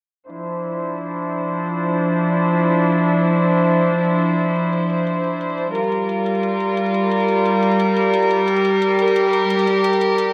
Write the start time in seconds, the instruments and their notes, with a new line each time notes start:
0.29 string section F3 D4 E4 C5, closed hi-hat
0.38 closed hi-hat
0.47 closed hi-hat
0.64 closed hi-hat
0.81 closed hi-hat
0.90 closed hi-hat
0.98 closed hi-hat
1.15 closed hi-hat
1.32 closed hi-hat
1.41 closed hi-hat
1.49 closed hi-hat
1.66 closed hi-hat
1.83 closed hi-hat
2.00 closed hi-hat
2.17 closed hi-hat
2.26 closed hi-hat
2.34 closed hi-hat
2.51 closed hi-hat
2.68 closed hi-hat
2.77 closed hi-hat
2.85 closed hi-hat
3.03 closed hi-hat
3.11 closed hi-hat
3.19 closed hi-hat
3.37 closed hi-hat
3.54 closed hi-hat
3.62 closed hi-hat
3.71 closed hi-hat
3.88 closed hi-hat
4.05 closed hi-hat
4.14 closed hi-hat
4.22 closed hi-hat
4.39 closed hi-hat
4.48 closed hi-hat
4.56 closed hi-hat
4.73 closed hi-hat
4.90 closed hi-hat
4.99 closed hi-hat
5.07 closed hi-hat
5.24 closed hi-hat
5.41 closed hi-hat
5.50 closed hi-hat
5.58 closed hi-hat
5.75 string section G3 F4 A#4, closed hi-hat
5.84 closed hi-hat
5.92 closed hi-hat
6.09 closed hi-hat
6.26 closed hi-hat
6.35 closed hi-hat
6.43 closed hi-hat
6.60 closed hi-hat
6.77 closed hi-hat
6.86 closed hi-hat
6.94 closed hi-hat
7.11 closed hi-hat
7.20 closed hi-hat
7.28 closed hi-hat
7.45 closed hi-hat
7.63 closed hi-hat
7.71 closed hi-hat
7.80 closed hi-hat
7.97 closed hi-hat
8.14 closed hi-hat
8.22 closed hi-hat
8.31 closed hi-hat
8.48 string section G4, closed hi-hat
8.57 closed hi-hat
8.65 closed hi-hat
8.82 closed hi-hat
8.99 closed hi-hat
9.08 closed hi-hat
9.16 closed hi-hat
9.33 closed hi-hat
9.50 closed hi-hat
9.59 closed hi-hat
9.67 closed hi-hat
9.84 closed hi-hat
9.93 closed hi-hat
10.01 closed hi-hat
10.18 closed hi-hat